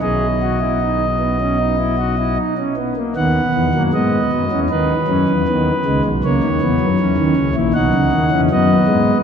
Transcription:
<<
  \new Staff \with { instrumentName = "Pipe organ" } { \time 4/4 \key b \major \tempo 4 = 78 << { dis''2.~ dis''8 r8 | fis''4 dis''4 b'2 | cis''2 fis''4 dis''4 | } \\ { gis'8 fis'16 e'16 dis'8 b16 cis'16 dis'16 e'16 fis'16 e'16 dis'16 cis'16 b16 ais16 | b8. ais16 b8. cis'16 dis'8 cis'8 b8 gis8 | ais8 b8 cis'8. e'16 dis'8. cis'16 b4 | } >> }
  \new Staff \with { instrumentName = "Pipe organ" } { \clef bass \time 4/4 \key b \major <b,, b,>2.~ <b,, b,>8 r8 | <dis, dis>8 <e, e>16 <fis, fis>16 <gis, gis>8 <fis, fis>16 <e, e>16 <dis, dis>8 <fis, fis>16 <e, e>16 <dis, dis>8 <cis, cis>16 <b,, b,>16 | <cis, cis>16 <dis, dis>16 <e, e>16 <fis, fis>16 <e, e>16 <dis, dis>16 <cis, cis>16 <ais,, ais,>16 <b,, b,>16 <cis, cis>16 <dis, dis>16 <e, e>16 <fis, fis>8 <gis, gis>8 | }
>>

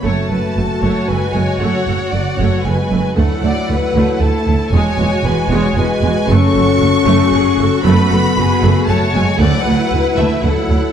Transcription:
<<
  \new Staff \with { instrumentName = "Violin section" } { \time 3/4 \key fis \minor \tempo 4 = 115 a''2 gis''4 | fis''2 gis''4 | fis''2 a''4 | gis''2 gis''4 |
cis'''2. | b''2 a''8 gis''8 | fis''4. e''8 fis''4 | }
  \new Staff \with { instrumentName = "Violin section" } { \time 3/4 \key fis \minor cis''8 b'8 a'8 cis''8 b'8 cis''8~ | cis''4 d''8 cis''8 b'4 | a'8 d''8 b'4 a'4 | cis''4 b'8 cis''8 b'4 |
a'2 gis'8 a'8 | b'8 a'8 gis'4 cis''4 | d''8 b'4. a'4 | }
  \new Staff \with { instrumentName = "Viola section" } { \time 3/4 \key fis \minor << { fis'2.~ | fis'2. | e'2. | fis'2. |
fis'2.~ | fis'2. | e'2. | } \\ { a8 a8 a8 a8 a8 a8 | a8 a8 a8 a8 a8 a8 | a8 a8 a8 a8 a8 a8 | gis8 gis8 gis8 gis8 gis8 gis8 |
a8 a8 a8 a8 a8 a8 | a8 a8 a8 a8 a8 a8 | a8 a8 a8 a8 a8 a8 | } >> }
  \new Staff \with { instrumentName = "French horn section" } { \clef bass \time 3/4 \key fis \minor a2 gis4 | fis2 gis4 | fis2 a4 | gis2 gis4 |
cis'2. | b2 a8 gis8 | fis4. e8 fis4 | }
  \new Staff \with { instrumentName = "Cello section" } { \clef bass \time 3/4 \key fis \minor fis,8 fis,8 fis,8 fis,8 fis,8 fis,8 | fis,8 fis,8 fis,8 fis,8 fis,8 fis,8 | d,8 d,8 d,8 d,8 d,8 d,8 | e,8 e,8 e,8 e,8 e,8 e,8 |
fis,8 fis,8 fis,8 fis,8 fis,8 fis,8 | fis,8 fis,8 fis,8 fis,8 fis,8 fis,8 | d,8 d,8 d,8 d,8 d,8 d,8 | }
  \new Staff \with { instrumentName = "Double bass section" } { \clef bass \time 3/4 \key fis \minor fis,,8 fis,,8 fis,,8 fis,,8 fis,,8 fis,,8 | fis,,8 fis,,8 fis,,8 fis,,8 fis,,8 fis,,8 | d,8 d,8 d,8 d,8 d,8 d,8 | e,,8 e,,8 e,,8 e,,8 e,,8 e,,8 |
fis,,8 fis,,8 fis,,8 fis,,8 fis,,8 fis,,8 | fis,,8 fis,,8 fis,,8 fis,,8 fis,,8 fis,,8 | d,8 d,8 d,8 d,8 d,8 d,8 | }
>>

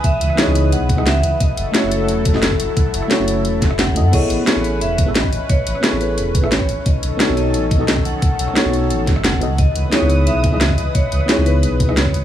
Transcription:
<<
  \new Staff \with { instrumentName = "Vibraphone" } { \time 4/4 \key a \lydian \tempo 4 = 176 e''4 dis''4 fis''4 e''4 | dis''4 cis''8 a'2~ a'8~ | a'2. fis''4 | dis''4 cis''4 e''4 dis''4 |
cis''4 r8 b'8 b'4 cis''4 | dis''4. dis''2 fis''8~ | fis''2~ fis''8 r8 fis''4 | dis''4 cis''4 e''4 dis''4 |
cis''4 r8 b'8 b'4 cis''4 | }
  \new Staff \with { instrumentName = "Analog synth pad" } { \time 4/4 \key a \lydian << { dis'''1 | e'1~ | e'1 | cis'1~ |
cis'1~ | cis'1~ | cis'1 | dis'''1~ |
dis'''1 | } \\ { <e b'>1 | <fis a'>1~ | <fis a'>1 | b'1~ |
b'1 | <dis a'>1~ | <dis a'>1 | <e b'>1~ |
<e b'>1 | } >> }
  \new Staff \with { instrumentName = "FM electric piano" } { \time 4/4 \key a \lydian r4 <b dis' e' gis' cis''>4.~ <b dis' e' gis' cis''>16 <b dis' e' gis' dis''>16 r4 | r4 <a cis' e' fis' cis''>4.~ <a cis' e' fis' cis''>16 <a cis' e' fis' dis''>16 r4 | r4 <a cis' e' fis' cis''>4.~ <a cis' e' fis' cis''>16 r8. <a cis' e' fis' dis''>16 r16 | <b e' gis' a' cis''>4 <b e' gis' a' cis''>4.~ <b e' gis' a' cis''>16 <b e' gis' a' e''>16 r4 |
r4 <b e' gis' a' cis''>4.~ <b e' gis' a' cis''>16 <b e' gis' a' e''>16 r4 | r4 <b dis' fis' a' cis''>4.~ <b dis' fis' a' cis''>16 <b dis' fis' a' dis''>16 r4 | r4 <b dis' fis' a' cis''>4.~ <b dis' fis' a' cis''>16 r8. <b dis' fis' a' dis''>16 r16 | r4 <b dis' e' gis' cis''>4.~ <b dis' e' gis' cis''>16 <b dis' e' gis' dis''>16 r4 |
r4 <b dis' e' gis' cis''>4.~ <b dis' e' gis' cis''>16 <b dis' e' gis' dis''>16 r4 | }
  \new Staff \with { instrumentName = "Sub bass" } { \clef bass \time 4/4 \key a \lydian r8 cis,16 r8 cis,8. b,,8. cis,8. cis,16 r16 | r8 fis,,16 r8 fis,,8. e,,8. fis,,8. fis,,16 r16 | r8 fis,,16 r8 fis,,8. e,,8. fis,,8. fis,8 | r8 a,,16 r8 a,,8. e,,8. a,,8. a,,16 r16 |
r8 a,,16 r8 a,,8. e,,8. a,,8. a,,16 r16 | r8 b,,16 r8 b,,8. a,,8. b,,8. b,,16 r16 | r8 b,,16 r8 b,,8. a,,8. fis,,8. cis,8~ | cis,16 r16 cis,16 r8 cis,8. b,,8. cis,8. cis,16 r16 |
r8 cis,16 r8 cis,8. b,,8. cis,8. cis,16 r16 | }
  \new DrumStaff \with { instrumentName = "Drums" } \drummode { \time 4/4 <hh bd>8 hh16 ss16 <hh sn>8 hh8 hh8 <hh bd>16 ss16 <hh sn>8 hh8 | <hh bd>8 hh8 <hh sn>8 hh8 hh8 <hh bd>16 sn16 <hh sn>16 bd16 hh8 | <hh bd>8 hh16 ss16 <hh sn>8 hh8 hh8 <hh bd sn>16 ss16 <hh sn>16 bd16 hh8 | <cymc hh bd>8 hh8 <hh sn>8 hho8 hh8 <hh bd>8 <hh sn>16 bd16 hho8 |
<hh bd>8 hh16 ss16 <hh sn>8 hho8 hh8 <hh bd>16 ss16 <hh sn>16 bd16 hho8 | <hh bd>8 hh8 <hh sn>8 hho8 hh8 <hh bd>8 <hh sn>16 bd16 hho8 | <hh bd>8 hh16 ss16 <hh sn>8 hho8 hh8 <hh bd sn>16 ss16 <hh sn>16 bd16 hho8 | <hh bd>8 hh8 <hh sn>8 hho8 hh8 <hh bd>8 <hh sn>16 bd16 hho8 |
<hh bd>8 hh16 ss16 <hh sn>8 hho8 hh8 <hh bd>16 ss16 <hh sn>16 bd16 hho8 | }
>>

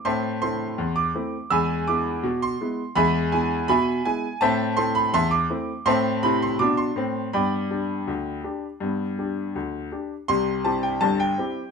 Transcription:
<<
  \new Staff \with { instrumentName = "Grand piano" } { \time 2/4 \key c \major \tempo 4 = 82 <e'' a'' c'''>8 c'''8. d'''8. | <gis'' b'' e'''>8 d'''8. c'''8. | <e'' gis'' b''>8 gis''8 <e'' gis'' b''>8 gis''8 | <c'' e'' a''>8 c'''16 b''16 <e'' a'' c'''>16 d'''8. |
<e'' a'' c'''>8 b''16 c'''16 d'''16 c'''8. | <d'' g'' b''>2~ | <d'' g'' b''>4 r4 | c'''8 a''16 g''16 a''16 g''8. | }
  \new Staff \with { instrumentName = "Grand piano" } { \time 2/4 \key c \major <a, c'>8 <a c' e'>8 e,8 <a c' e'>8 | <e, gis>8 <gis b e'>8 b,8 <gis b e'>8 | <e, gis>8 <gis b e'>8 b,8 <gis b e'>8 | <a, c'>8 <a c' e'>8 e,8 <a c' e'>8 |
<a, c'>8 <c e'>8 <b, d'>8 <a, c'>8 | <g, b>8 <d' g'>8 d,8 <d' g'>8 | <g, b>8 <d' g'>8 d,8 <d' g'>8 | <c, c>8 <c' e' g'>8 <g,, g,>8 <c' e' g'>8 | }
>>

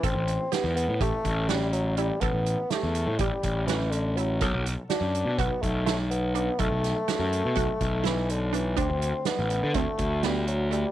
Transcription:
<<
  \new Staff \with { instrumentName = "Synth arpeggio sound" } { \time 9/8 \key a \dorian \tempo 4. = 82 a'4 g'4 g'4 fis'4 e'8 | a'4 g'4 g'4 fis'4 e'8 | a'4 fis'4 fis'4 e'4 d'8 | a'4 fis'4 fis'4 e'4 d'8 |
d'4 d'4 c'4 b4 a8 | }
  \new Staff \with { instrumentName = "Bassoon" } { \time 9/8 \key a \dorian c'4 b8 b8 a4 g8 fis8 g8 | b4 a4 g4 e8 d8 fis8~ | fis8 r8 d'4 b8 a8 a8 b8 b8 | a2. e8 d8 e8 |
c'4 b4 a4 g8 fis8 g8 | }
  \new Staff \with { instrumentName = "Picked electric bass" } { \clef bass \time 9/8 \key a \dorian a,,16 a,,8 r8 e,8 a,16 a,,16 r16 a,,2 | a,,16 a,,8 r8 e,8 a,16 a,,16 r16 a,,2 | b,,16 b,,8 r8 fis,8 b,16 b,,16 r16 b,,2 | b,,16 b,,8 r8 fis,8 b,16 b,,16 r16 b,,2 |
d,16 d,8 r8 a,,8 d16 d,16 r16 d,2 | }
  \new DrumStaff \with { instrumentName = "Drums" } \drummode { \time 9/8 <hh bd>8 hh8 <hh sn>8 hh8 <hh bd>8 <hh bd>8 <hh sn>8 hh8 hh8 | <hh bd>8 hh8 <hh sn>8 hh8 <hh bd>8 <hh bd>8 <hh sn>8 hh8 hh8 | <hh bd>8 hh8 <hh sn>8 hh8 <hh bd>8 <hh bd>8 <hh sn>8 hh8 hh8 | <hh bd>8 <hh sn>8 <hh sn>8 hh8 <hh bd>8 <hh bd>8 <hh sn>8 hh8 hh8 |
<hh bd>8 hh8 <hh sn>8 hh8 <hh bd>8 <hh bd>8 <hh sn>8 hh8 hh8 | }
>>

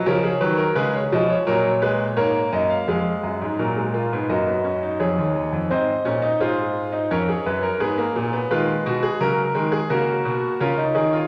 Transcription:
<<
  \new Staff \with { instrumentName = "Grand piano" } { \time 4/4 \key cis \dorian \tempo 4 = 85 << { cis''4 b'16 cis''16 dis''16 cis''16 ais'8 b'8 cis''8 dis''16 eis''16 | eis''2 dis''4 cis''4 | dis''4 bis'4 cis''2 | \key b \lydian b'2 ais'4 ais'8 gis'8 | } \\ { ais'16 gis'16 b'16 ais'16 gis'4 cis''4 ais'4 | gis'4 ais'8 eis'8 fis'4 gis'4 | bis'4 gis'4 ais'16 gis'16 b'16 ais'16 gis'4 | eis'8 fis'16 gis'16 ais'8. gis'16 fis'4 eis'16 dis'16 dis'16 eis'16 | } >> }
  \new Staff \with { instrumentName = "Grand piano" } { \clef bass \time 4/4 \key cis \dorian << { eis8 fis8 gis8 eis8 fis8 gis8 ais4 | gis4 fis16 gis16 ais16 b16 ais16 b16 cis'16 dis'4~ dis'16 | bis8 cis'16 dis'16 eis'8. dis'16 cis'4 b16 ais16 ais16 b16 | \key b \lydian gis4 fis8 gis8 ais4 cis'4 | } \\ { cis8 dis8 cis8 b,8 ais,4 gis,8 fis,8 | eis,8 fis,16 gis,16 ais,8. gis,16 fis,4 eis,16 dis,16 dis,16 eis,16 | gis,8 ais,8 gis,4 eis,8 fis,8 gis,8 ais,8 | dis8 b,8 cis8 dis8 cis8 b,8 cis8 dis8 | } >> }
>>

